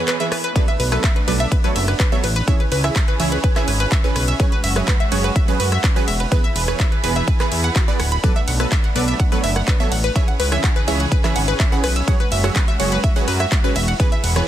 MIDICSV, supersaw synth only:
0, 0, Header, 1, 2, 480
1, 0, Start_track
1, 0, Tempo, 480000
1, 557, Time_signature, 4, 2, 24, 8
1, 14479, End_track
2, 0, Start_track
2, 0, Title_t, "Supersaw synth"
2, 0, Program_c, 0, 81
2, 0, Note_on_c, 0, 52, 95
2, 0, Note_on_c, 0, 59, 87
2, 0, Note_on_c, 0, 68, 88
2, 0, Note_on_c, 0, 73, 108
2, 171, Note_off_c, 0, 52, 0
2, 171, Note_off_c, 0, 59, 0
2, 171, Note_off_c, 0, 68, 0
2, 171, Note_off_c, 0, 73, 0
2, 201, Note_on_c, 0, 52, 77
2, 201, Note_on_c, 0, 59, 72
2, 201, Note_on_c, 0, 68, 72
2, 201, Note_on_c, 0, 71, 86
2, 318, Note_off_c, 0, 52, 0
2, 318, Note_off_c, 0, 71, 0
2, 319, Note_off_c, 0, 59, 0
2, 319, Note_off_c, 0, 68, 0
2, 558, Note_on_c, 0, 54, 88
2, 558, Note_on_c, 0, 59, 81
2, 558, Note_on_c, 0, 69, 83
2, 558, Note_on_c, 0, 74, 98
2, 682, Note_off_c, 0, 54, 0
2, 682, Note_off_c, 0, 59, 0
2, 682, Note_off_c, 0, 69, 0
2, 682, Note_off_c, 0, 74, 0
2, 921, Note_on_c, 0, 54, 79
2, 921, Note_on_c, 0, 59, 70
2, 921, Note_on_c, 0, 69, 72
2, 921, Note_on_c, 0, 76, 87
2, 1038, Note_off_c, 0, 69, 0
2, 1038, Note_off_c, 0, 76, 0
2, 1039, Note_off_c, 0, 54, 0
2, 1039, Note_off_c, 0, 59, 0
2, 1277, Note_on_c, 0, 54, 93
2, 1277, Note_on_c, 0, 59, 81
2, 1277, Note_on_c, 0, 69, 85
2, 1277, Note_on_c, 0, 74, 102
2, 1472, Note_off_c, 0, 54, 0
2, 1472, Note_off_c, 0, 59, 0
2, 1472, Note_off_c, 0, 69, 0
2, 1472, Note_off_c, 0, 74, 0
2, 1641, Note_on_c, 0, 54, 100
2, 1641, Note_on_c, 0, 59, 90
2, 1641, Note_on_c, 0, 69, 89
2, 1641, Note_on_c, 0, 73, 110
2, 1759, Note_off_c, 0, 54, 0
2, 1759, Note_off_c, 0, 59, 0
2, 1759, Note_off_c, 0, 69, 0
2, 1759, Note_off_c, 0, 73, 0
2, 2121, Note_on_c, 0, 54, 90
2, 2121, Note_on_c, 0, 59, 87
2, 2121, Note_on_c, 0, 69, 87
2, 2121, Note_on_c, 0, 73, 103
2, 2238, Note_off_c, 0, 54, 0
2, 2238, Note_off_c, 0, 59, 0
2, 2238, Note_off_c, 0, 73, 0
2, 2239, Note_off_c, 0, 69, 0
2, 2477, Note_on_c, 0, 52, 87
2, 2477, Note_on_c, 0, 73, 98
2, 2478, Note_on_c, 0, 61, 81
2, 2478, Note_on_c, 0, 68, 78
2, 2602, Note_off_c, 0, 52, 0
2, 2602, Note_off_c, 0, 61, 0
2, 2602, Note_off_c, 0, 68, 0
2, 2602, Note_off_c, 0, 73, 0
2, 2841, Note_on_c, 0, 52, 80
2, 2841, Note_on_c, 0, 61, 70
2, 2841, Note_on_c, 0, 68, 71
2, 2841, Note_on_c, 0, 76, 84
2, 2958, Note_off_c, 0, 52, 0
2, 2958, Note_off_c, 0, 61, 0
2, 2958, Note_off_c, 0, 68, 0
2, 2958, Note_off_c, 0, 76, 0
2, 3197, Note_on_c, 0, 52, 91
2, 3197, Note_on_c, 0, 68, 85
2, 3198, Note_on_c, 0, 61, 83
2, 3198, Note_on_c, 0, 73, 103
2, 3392, Note_off_c, 0, 52, 0
2, 3392, Note_off_c, 0, 61, 0
2, 3392, Note_off_c, 0, 68, 0
2, 3392, Note_off_c, 0, 73, 0
2, 3562, Note_on_c, 0, 52, 98
2, 3562, Note_on_c, 0, 61, 94
2, 3562, Note_on_c, 0, 68, 88
2, 3562, Note_on_c, 0, 71, 108
2, 3679, Note_off_c, 0, 52, 0
2, 3679, Note_off_c, 0, 61, 0
2, 3679, Note_off_c, 0, 68, 0
2, 3679, Note_off_c, 0, 71, 0
2, 4041, Note_on_c, 0, 52, 95
2, 4041, Note_on_c, 0, 61, 86
2, 4041, Note_on_c, 0, 68, 85
2, 4041, Note_on_c, 0, 71, 104
2, 4158, Note_off_c, 0, 71, 0
2, 4159, Note_off_c, 0, 52, 0
2, 4159, Note_off_c, 0, 61, 0
2, 4159, Note_off_c, 0, 68, 0
2, 4397, Note_on_c, 0, 54, 88
2, 4397, Note_on_c, 0, 61, 84
2, 4397, Note_on_c, 0, 68, 82
2, 4397, Note_on_c, 0, 73, 97
2, 4521, Note_off_c, 0, 54, 0
2, 4521, Note_off_c, 0, 73, 0
2, 4522, Note_off_c, 0, 61, 0
2, 4522, Note_off_c, 0, 68, 0
2, 4761, Note_on_c, 0, 54, 78
2, 4761, Note_on_c, 0, 61, 71
2, 4761, Note_on_c, 0, 68, 69
2, 4761, Note_on_c, 0, 76, 84
2, 4879, Note_off_c, 0, 54, 0
2, 4879, Note_off_c, 0, 61, 0
2, 4879, Note_off_c, 0, 68, 0
2, 4879, Note_off_c, 0, 76, 0
2, 5117, Note_on_c, 0, 61, 86
2, 5117, Note_on_c, 0, 68, 83
2, 5118, Note_on_c, 0, 54, 90
2, 5118, Note_on_c, 0, 73, 101
2, 5312, Note_off_c, 0, 54, 0
2, 5312, Note_off_c, 0, 61, 0
2, 5312, Note_off_c, 0, 68, 0
2, 5312, Note_off_c, 0, 73, 0
2, 5481, Note_on_c, 0, 54, 99
2, 5481, Note_on_c, 0, 61, 92
2, 5481, Note_on_c, 0, 68, 90
2, 5481, Note_on_c, 0, 71, 108
2, 5598, Note_off_c, 0, 54, 0
2, 5599, Note_off_c, 0, 61, 0
2, 5599, Note_off_c, 0, 68, 0
2, 5599, Note_off_c, 0, 71, 0
2, 5961, Note_on_c, 0, 54, 93
2, 5961, Note_on_c, 0, 61, 87
2, 5961, Note_on_c, 0, 68, 88
2, 5961, Note_on_c, 0, 71, 101
2, 6078, Note_off_c, 0, 54, 0
2, 6078, Note_off_c, 0, 61, 0
2, 6078, Note_off_c, 0, 68, 0
2, 6079, Note_off_c, 0, 71, 0
2, 6318, Note_on_c, 0, 52, 87
2, 6318, Note_on_c, 0, 59, 81
2, 6318, Note_on_c, 0, 68, 79
2, 6318, Note_on_c, 0, 71, 100
2, 6442, Note_off_c, 0, 52, 0
2, 6442, Note_off_c, 0, 59, 0
2, 6442, Note_off_c, 0, 68, 0
2, 6442, Note_off_c, 0, 71, 0
2, 6681, Note_on_c, 0, 52, 77
2, 6681, Note_on_c, 0, 59, 73
2, 6681, Note_on_c, 0, 68, 71
2, 6681, Note_on_c, 0, 73, 85
2, 6798, Note_off_c, 0, 68, 0
2, 6799, Note_off_c, 0, 52, 0
2, 6799, Note_off_c, 0, 59, 0
2, 6799, Note_off_c, 0, 73, 0
2, 7037, Note_on_c, 0, 59, 85
2, 7037, Note_on_c, 0, 68, 83
2, 7037, Note_on_c, 0, 71, 105
2, 7038, Note_on_c, 0, 52, 91
2, 7232, Note_off_c, 0, 52, 0
2, 7232, Note_off_c, 0, 59, 0
2, 7232, Note_off_c, 0, 68, 0
2, 7232, Note_off_c, 0, 71, 0
2, 7401, Note_on_c, 0, 52, 102
2, 7401, Note_on_c, 0, 59, 92
2, 7401, Note_on_c, 0, 68, 89
2, 7401, Note_on_c, 0, 71, 110
2, 7518, Note_off_c, 0, 52, 0
2, 7518, Note_off_c, 0, 59, 0
2, 7518, Note_off_c, 0, 68, 0
2, 7518, Note_off_c, 0, 71, 0
2, 7880, Note_on_c, 0, 52, 94
2, 7880, Note_on_c, 0, 59, 87
2, 7880, Note_on_c, 0, 68, 83
2, 7880, Note_on_c, 0, 71, 103
2, 7998, Note_off_c, 0, 52, 0
2, 7998, Note_off_c, 0, 59, 0
2, 7998, Note_off_c, 0, 68, 0
2, 7998, Note_off_c, 0, 71, 0
2, 8236, Note_on_c, 0, 54, 88
2, 8236, Note_on_c, 0, 69, 81
2, 8236, Note_on_c, 0, 74, 99
2, 8237, Note_on_c, 0, 59, 79
2, 8361, Note_off_c, 0, 54, 0
2, 8361, Note_off_c, 0, 59, 0
2, 8361, Note_off_c, 0, 69, 0
2, 8361, Note_off_c, 0, 74, 0
2, 8599, Note_on_c, 0, 54, 80
2, 8599, Note_on_c, 0, 59, 71
2, 8599, Note_on_c, 0, 69, 72
2, 8599, Note_on_c, 0, 76, 85
2, 8718, Note_off_c, 0, 54, 0
2, 8718, Note_off_c, 0, 59, 0
2, 8718, Note_off_c, 0, 69, 0
2, 8718, Note_off_c, 0, 76, 0
2, 8956, Note_on_c, 0, 59, 85
2, 8957, Note_on_c, 0, 54, 93
2, 8957, Note_on_c, 0, 69, 82
2, 8957, Note_on_c, 0, 74, 101
2, 9152, Note_off_c, 0, 54, 0
2, 9152, Note_off_c, 0, 59, 0
2, 9152, Note_off_c, 0, 69, 0
2, 9152, Note_off_c, 0, 74, 0
2, 9320, Note_on_c, 0, 54, 102
2, 9320, Note_on_c, 0, 59, 89
2, 9320, Note_on_c, 0, 69, 87
2, 9320, Note_on_c, 0, 73, 110
2, 9438, Note_off_c, 0, 54, 0
2, 9438, Note_off_c, 0, 59, 0
2, 9438, Note_off_c, 0, 69, 0
2, 9438, Note_off_c, 0, 73, 0
2, 9800, Note_on_c, 0, 54, 94
2, 9800, Note_on_c, 0, 59, 87
2, 9800, Note_on_c, 0, 69, 85
2, 9800, Note_on_c, 0, 73, 102
2, 9918, Note_off_c, 0, 54, 0
2, 9918, Note_off_c, 0, 59, 0
2, 9918, Note_off_c, 0, 69, 0
2, 9918, Note_off_c, 0, 73, 0
2, 10157, Note_on_c, 0, 52, 88
2, 10157, Note_on_c, 0, 61, 82
2, 10157, Note_on_c, 0, 68, 82
2, 10157, Note_on_c, 0, 73, 96
2, 10281, Note_off_c, 0, 61, 0
2, 10281, Note_off_c, 0, 73, 0
2, 10282, Note_off_c, 0, 52, 0
2, 10282, Note_off_c, 0, 68, 0
2, 10520, Note_on_c, 0, 52, 80
2, 10520, Note_on_c, 0, 76, 86
2, 10521, Note_on_c, 0, 61, 74
2, 10521, Note_on_c, 0, 68, 70
2, 10638, Note_off_c, 0, 52, 0
2, 10638, Note_off_c, 0, 61, 0
2, 10638, Note_off_c, 0, 68, 0
2, 10638, Note_off_c, 0, 76, 0
2, 10878, Note_on_c, 0, 52, 89
2, 10878, Note_on_c, 0, 61, 86
2, 10878, Note_on_c, 0, 68, 86
2, 10878, Note_on_c, 0, 73, 103
2, 11072, Note_off_c, 0, 61, 0
2, 11072, Note_off_c, 0, 68, 0
2, 11073, Note_off_c, 0, 52, 0
2, 11073, Note_off_c, 0, 73, 0
2, 11241, Note_on_c, 0, 52, 98
2, 11241, Note_on_c, 0, 71, 111
2, 11242, Note_on_c, 0, 61, 89
2, 11242, Note_on_c, 0, 68, 91
2, 11359, Note_off_c, 0, 52, 0
2, 11359, Note_off_c, 0, 61, 0
2, 11359, Note_off_c, 0, 68, 0
2, 11359, Note_off_c, 0, 71, 0
2, 11721, Note_on_c, 0, 52, 91
2, 11721, Note_on_c, 0, 61, 87
2, 11721, Note_on_c, 0, 68, 85
2, 11722, Note_on_c, 0, 71, 106
2, 11839, Note_off_c, 0, 52, 0
2, 11839, Note_off_c, 0, 61, 0
2, 11839, Note_off_c, 0, 68, 0
2, 11839, Note_off_c, 0, 71, 0
2, 12078, Note_on_c, 0, 54, 87
2, 12078, Note_on_c, 0, 61, 84
2, 12078, Note_on_c, 0, 68, 80
2, 12078, Note_on_c, 0, 73, 97
2, 12202, Note_off_c, 0, 54, 0
2, 12202, Note_off_c, 0, 61, 0
2, 12202, Note_off_c, 0, 68, 0
2, 12202, Note_off_c, 0, 73, 0
2, 12441, Note_on_c, 0, 54, 76
2, 12441, Note_on_c, 0, 61, 70
2, 12441, Note_on_c, 0, 68, 70
2, 12441, Note_on_c, 0, 76, 87
2, 12558, Note_off_c, 0, 54, 0
2, 12558, Note_off_c, 0, 68, 0
2, 12558, Note_off_c, 0, 76, 0
2, 12559, Note_off_c, 0, 61, 0
2, 12797, Note_on_c, 0, 54, 90
2, 12797, Note_on_c, 0, 61, 87
2, 12797, Note_on_c, 0, 68, 87
2, 12797, Note_on_c, 0, 73, 102
2, 12992, Note_off_c, 0, 54, 0
2, 12992, Note_off_c, 0, 61, 0
2, 12992, Note_off_c, 0, 68, 0
2, 12992, Note_off_c, 0, 73, 0
2, 13160, Note_on_c, 0, 54, 99
2, 13160, Note_on_c, 0, 61, 92
2, 13160, Note_on_c, 0, 68, 90
2, 13160, Note_on_c, 0, 71, 110
2, 13278, Note_off_c, 0, 54, 0
2, 13278, Note_off_c, 0, 61, 0
2, 13278, Note_off_c, 0, 68, 0
2, 13278, Note_off_c, 0, 71, 0
2, 13640, Note_on_c, 0, 54, 97
2, 13640, Note_on_c, 0, 61, 83
2, 13640, Note_on_c, 0, 71, 99
2, 13641, Note_on_c, 0, 68, 85
2, 13758, Note_off_c, 0, 54, 0
2, 13758, Note_off_c, 0, 61, 0
2, 13758, Note_off_c, 0, 71, 0
2, 13759, Note_off_c, 0, 68, 0
2, 13997, Note_on_c, 0, 52, 86
2, 13998, Note_on_c, 0, 59, 81
2, 13998, Note_on_c, 0, 68, 80
2, 13998, Note_on_c, 0, 71, 97
2, 14122, Note_off_c, 0, 52, 0
2, 14122, Note_off_c, 0, 59, 0
2, 14122, Note_off_c, 0, 68, 0
2, 14122, Note_off_c, 0, 71, 0
2, 14360, Note_on_c, 0, 52, 77
2, 14360, Note_on_c, 0, 59, 71
2, 14360, Note_on_c, 0, 68, 71
2, 14361, Note_on_c, 0, 73, 87
2, 14478, Note_off_c, 0, 52, 0
2, 14478, Note_off_c, 0, 59, 0
2, 14478, Note_off_c, 0, 68, 0
2, 14478, Note_off_c, 0, 73, 0
2, 14479, End_track
0, 0, End_of_file